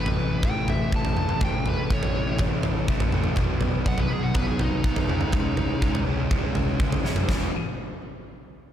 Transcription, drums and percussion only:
0, 0, Header, 1, 2, 480
1, 0, Start_track
1, 0, Key_signature, 4, "major"
1, 0, Tempo, 488998
1, 1390, Time_signature, 4, 2, 24, 8
1, 8567, End_track
2, 0, Start_track
2, 0, Title_t, "Drums"
2, 60, Note_on_c, 9, 43, 93
2, 158, Note_off_c, 9, 43, 0
2, 423, Note_on_c, 9, 36, 116
2, 423, Note_on_c, 9, 43, 78
2, 521, Note_off_c, 9, 36, 0
2, 521, Note_off_c, 9, 43, 0
2, 667, Note_on_c, 9, 43, 87
2, 765, Note_off_c, 9, 43, 0
2, 908, Note_on_c, 9, 36, 107
2, 1006, Note_off_c, 9, 36, 0
2, 1027, Note_on_c, 9, 43, 87
2, 1125, Note_off_c, 9, 43, 0
2, 1145, Note_on_c, 9, 47, 77
2, 1243, Note_off_c, 9, 47, 0
2, 1265, Note_on_c, 9, 47, 78
2, 1364, Note_off_c, 9, 47, 0
2, 1384, Note_on_c, 9, 43, 86
2, 1386, Note_on_c, 9, 36, 113
2, 1482, Note_off_c, 9, 43, 0
2, 1484, Note_off_c, 9, 36, 0
2, 1626, Note_on_c, 9, 43, 81
2, 1724, Note_off_c, 9, 43, 0
2, 1869, Note_on_c, 9, 36, 110
2, 1968, Note_off_c, 9, 36, 0
2, 1989, Note_on_c, 9, 43, 91
2, 2087, Note_off_c, 9, 43, 0
2, 2341, Note_on_c, 9, 43, 89
2, 2349, Note_on_c, 9, 36, 110
2, 2439, Note_off_c, 9, 43, 0
2, 2447, Note_off_c, 9, 36, 0
2, 2584, Note_on_c, 9, 43, 90
2, 2682, Note_off_c, 9, 43, 0
2, 2830, Note_on_c, 9, 36, 100
2, 2928, Note_off_c, 9, 36, 0
2, 2948, Note_on_c, 9, 43, 92
2, 3046, Note_off_c, 9, 43, 0
2, 3066, Note_on_c, 9, 47, 80
2, 3164, Note_off_c, 9, 47, 0
2, 3177, Note_on_c, 9, 47, 79
2, 3275, Note_off_c, 9, 47, 0
2, 3297, Note_on_c, 9, 43, 77
2, 3307, Note_on_c, 9, 36, 100
2, 3395, Note_off_c, 9, 43, 0
2, 3405, Note_off_c, 9, 36, 0
2, 3540, Note_on_c, 9, 43, 83
2, 3638, Note_off_c, 9, 43, 0
2, 3788, Note_on_c, 9, 36, 101
2, 3886, Note_off_c, 9, 36, 0
2, 3904, Note_on_c, 9, 43, 89
2, 4002, Note_off_c, 9, 43, 0
2, 4266, Note_on_c, 9, 43, 84
2, 4270, Note_on_c, 9, 36, 113
2, 4364, Note_off_c, 9, 43, 0
2, 4368, Note_off_c, 9, 36, 0
2, 4509, Note_on_c, 9, 43, 86
2, 4607, Note_off_c, 9, 43, 0
2, 4753, Note_on_c, 9, 36, 110
2, 4851, Note_off_c, 9, 36, 0
2, 4872, Note_on_c, 9, 43, 98
2, 4970, Note_off_c, 9, 43, 0
2, 5001, Note_on_c, 9, 47, 77
2, 5099, Note_off_c, 9, 47, 0
2, 5111, Note_on_c, 9, 47, 84
2, 5209, Note_off_c, 9, 47, 0
2, 5226, Note_on_c, 9, 43, 75
2, 5233, Note_on_c, 9, 36, 114
2, 5325, Note_off_c, 9, 43, 0
2, 5331, Note_off_c, 9, 36, 0
2, 5470, Note_on_c, 9, 43, 82
2, 5568, Note_off_c, 9, 43, 0
2, 5714, Note_on_c, 9, 36, 112
2, 5813, Note_off_c, 9, 36, 0
2, 5839, Note_on_c, 9, 43, 88
2, 5937, Note_off_c, 9, 43, 0
2, 6193, Note_on_c, 9, 43, 90
2, 6195, Note_on_c, 9, 36, 114
2, 6292, Note_off_c, 9, 43, 0
2, 6293, Note_off_c, 9, 36, 0
2, 6431, Note_on_c, 9, 43, 87
2, 6529, Note_off_c, 9, 43, 0
2, 6673, Note_on_c, 9, 36, 110
2, 6772, Note_off_c, 9, 36, 0
2, 6797, Note_on_c, 9, 43, 99
2, 6895, Note_off_c, 9, 43, 0
2, 6920, Note_on_c, 9, 38, 66
2, 7018, Note_off_c, 9, 38, 0
2, 7028, Note_on_c, 9, 43, 97
2, 7126, Note_off_c, 9, 43, 0
2, 7153, Note_on_c, 9, 36, 100
2, 7158, Note_on_c, 9, 38, 107
2, 7251, Note_off_c, 9, 36, 0
2, 7256, Note_off_c, 9, 38, 0
2, 8567, End_track
0, 0, End_of_file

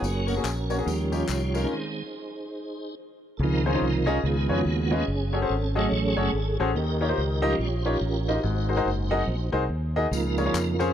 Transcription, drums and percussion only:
0, 0, Header, 1, 2, 480
1, 0, Start_track
1, 0, Key_signature, -5, "major"
1, 0, Tempo, 420757
1, 25, Time_signature, 4, 2, 24, 8
1, 12472, End_track
2, 0, Start_track
2, 0, Title_t, "Drums"
2, 44, Note_on_c, 9, 54, 75
2, 158, Note_off_c, 9, 54, 0
2, 320, Note_on_c, 9, 54, 47
2, 434, Note_off_c, 9, 54, 0
2, 512, Note_on_c, 9, 39, 93
2, 512, Note_on_c, 9, 54, 83
2, 626, Note_off_c, 9, 39, 0
2, 626, Note_off_c, 9, 54, 0
2, 800, Note_on_c, 9, 54, 48
2, 914, Note_off_c, 9, 54, 0
2, 1000, Note_on_c, 9, 54, 67
2, 1114, Note_off_c, 9, 54, 0
2, 1282, Note_on_c, 9, 54, 48
2, 1397, Note_off_c, 9, 54, 0
2, 1467, Note_on_c, 9, 39, 77
2, 1467, Note_on_c, 9, 54, 88
2, 1581, Note_off_c, 9, 39, 0
2, 1581, Note_off_c, 9, 54, 0
2, 1766, Note_on_c, 9, 54, 59
2, 1880, Note_off_c, 9, 54, 0
2, 11555, Note_on_c, 9, 54, 85
2, 11669, Note_off_c, 9, 54, 0
2, 11839, Note_on_c, 9, 54, 52
2, 11953, Note_off_c, 9, 54, 0
2, 12036, Note_on_c, 9, 39, 93
2, 12036, Note_on_c, 9, 54, 100
2, 12150, Note_off_c, 9, 39, 0
2, 12150, Note_off_c, 9, 54, 0
2, 12325, Note_on_c, 9, 54, 47
2, 12439, Note_off_c, 9, 54, 0
2, 12472, End_track
0, 0, End_of_file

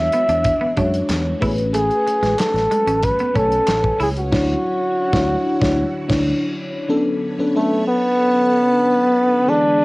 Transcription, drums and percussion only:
0, 0, Header, 1, 2, 480
1, 0, Start_track
1, 0, Tempo, 645161
1, 1296, Time_signature, 4, 2, 24, 8
1, 7326, End_track
2, 0, Start_track
2, 0, Title_t, "Drums"
2, 93, Note_on_c, 9, 42, 70
2, 168, Note_off_c, 9, 42, 0
2, 216, Note_on_c, 9, 42, 51
2, 290, Note_off_c, 9, 42, 0
2, 331, Note_on_c, 9, 42, 91
2, 335, Note_on_c, 9, 36, 82
2, 405, Note_off_c, 9, 42, 0
2, 409, Note_off_c, 9, 36, 0
2, 571, Note_on_c, 9, 42, 73
2, 575, Note_on_c, 9, 36, 78
2, 645, Note_off_c, 9, 42, 0
2, 649, Note_off_c, 9, 36, 0
2, 697, Note_on_c, 9, 42, 47
2, 771, Note_off_c, 9, 42, 0
2, 812, Note_on_c, 9, 42, 87
2, 815, Note_on_c, 9, 39, 77
2, 820, Note_on_c, 9, 38, 94
2, 887, Note_off_c, 9, 42, 0
2, 889, Note_off_c, 9, 39, 0
2, 894, Note_off_c, 9, 38, 0
2, 1055, Note_on_c, 9, 36, 90
2, 1055, Note_on_c, 9, 46, 70
2, 1129, Note_off_c, 9, 46, 0
2, 1130, Note_off_c, 9, 36, 0
2, 1176, Note_on_c, 9, 42, 48
2, 1250, Note_off_c, 9, 42, 0
2, 1292, Note_on_c, 9, 42, 90
2, 1367, Note_off_c, 9, 42, 0
2, 1416, Note_on_c, 9, 42, 35
2, 1491, Note_off_c, 9, 42, 0
2, 1541, Note_on_c, 9, 42, 70
2, 1615, Note_off_c, 9, 42, 0
2, 1657, Note_on_c, 9, 42, 47
2, 1666, Note_on_c, 9, 38, 33
2, 1731, Note_off_c, 9, 42, 0
2, 1741, Note_off_c, 9, 38, 0
2, 1777, Note_on_c, 9, 39, 79
2, 1779, Note_on_c, 9, 42, 92
2, 1785, Note_on_c, 9, 38, 119
2, 1852, Note_off_c, 9, 39, 0
2, 1853, Note_off_c, 9, 42, 0
2, 1859, Note_off_c, 9, 38, 0
2, 1902, Note_on_c, 9, 42, 31
2, 1909, Note_on_c, 9, 38, 31
2, 1976, Note_off_c, 9, 42, 0
2, 1983, Note_off_c, 9, 38, 0
2, 2019, Note_on_c, 9, 42, 62
2, 2094, Note_off_c, 9, 42, 0
2, 2138, Note_on_c, 9, 42, 57
2, 2212, Note_off_c, 9, 42, 0
2, 2251, Note_on_c, 9, 42, 86
2, 2256, Note_on_c, 9, 36, 86
2, 2325, Note_off_c, 9, 42, 0
2, 2331, Note_off_c, 9, 36, 0
2, 2372, Note_on_c, 9, 42, 33
2, 2446, Note_off_c, 9, 42, 0
2, 2495, Note_on_c, 9, 36, 78
2, 2495, Note_on_c, 9, 42, 73
2, 2570, Note_off_c, 9, 36, 0
2, 2570, Note_off_c, 9, 42, 0
2, 2617, Note_on_c, 9, 42, 43
2, 2691, Note_off_c, 9, 42, 0
2, 2733, Note_on_c, 9, 42, 97
2, 2734, Note_on_c, 9, 39, 79
2, 2740, Note_on_c, 9, 38, 93
2, 2807, Note_off_c, 9, 42, 0
2, 2808, Note_off_c, 9, 39, 0
2, 2815, Note_off_c, 9, 38, 0
2, 2857, Note_on_c, 9, 36, 82
2, 2931, Note_off_c, 9, 36, 0
2, 2978, Note_on_c, 9, 46, 68
2, 3053, Note_off_c, 9, 46, 0
2, 3099, Note_on_c, 9, 42, 54
2, 3174, Note_off_c, 9, 42, 0
2, 3217, Note_on_c, 9, 36, 109
2, 3218, Note_on_c, 9, 49, 75
2, 3225, Note_on_c, 9, 38, 100
2, 3292, Note_off_c, 9, 36, 0
2, 3292, Note_off_c, 9, 49, 0
2, 3299, Note_off_c, 9, 38, 0
2, 3817, Note_on_c, 9, 36, 102
2, 3827, Note_on_c, 9, 38, 99
2, 3891, Note_off_c, 9, 36, 0
2, 3901, Note_off_c, 9, 38, 0
2, 4177, Note_on_c, 9, 36, 108
2, 4186, Note_on_c, 9, 38, 95
2, 4251, Note_off_c, 9, 36, 0
2, 4261, Note_off_c, 9, 38, 0
2, 4537, Note_on_c, 9, 36, 98
2, 4538, Note_on_c, 9, 49, 76
2, 4545, Note_on_c, 9, 38, 100
2, 4611, Note_off_c, 9, 36, 0
2, 4612, Note_off_c, 9, 49, 0
2, 4619, Note_off_c, 9, 38, 0
2, 7326, End_track
0, 0, End_of_file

